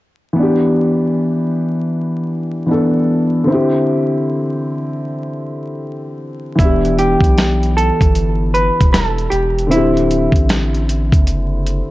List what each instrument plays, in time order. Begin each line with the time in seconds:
0.33 upright piano E3 B3
0.39 upright piano D4 G4
2.66 upright piano E3 B3 D4
2.71 upright piano A4
3.44 upright piano D3 C4
3.50 upright piano E4 G4
6.55 sub bass E1, upright piano E3 B3, hollow-body jazz guitar E4, kick
6.60 upright piano D4, closed hi-hat
6.65 upright piano G4
6.85 closed hi-hat
6.99 hollow-body jazz guitar G4, closed hi-hat
7.21 sub bass B1, kick, closed hi-hat
7.38 finger snap, snare, closed hi-hat
7.63 closed hi-hat
7.77 hollow-body jazz guitar A4, closed hi-hat
8.01 sub bass G1, kick, closed hi-hat
8.15 closed hi-hat
8.54 hollow-body jazz guitar B4, closed hi-hat
8.81 sub bass E1, kick, closed hi-hat
8.93 sub bass E1, hollow-body jazz guitar A4, finger snap, snare, closed hi-hat
9.18 closed hi-hat
9.30 sub bass E1, hollow-body jazz guitar G4, closed hi-hat
9.59 closed hi-hat
9.67 upright piano D3 C4
9.71 sub bass D1, hollow-body jazz guitar E4, upright piano E4, closed hi-hat
9.76 upright piano G4
9.97 closed hi-hat
10.11 closed hi-hat
10.32 sub bass A1, kick, closed hi-hat
10.49 finger snap, snare, closed hi-hat
10.75 closed hi-hat
10.89 closed hi-hat
11.12 sub bass F#1, kick, closed hi-hat
11.27 closed hi-hat
11.66 closed hi-hat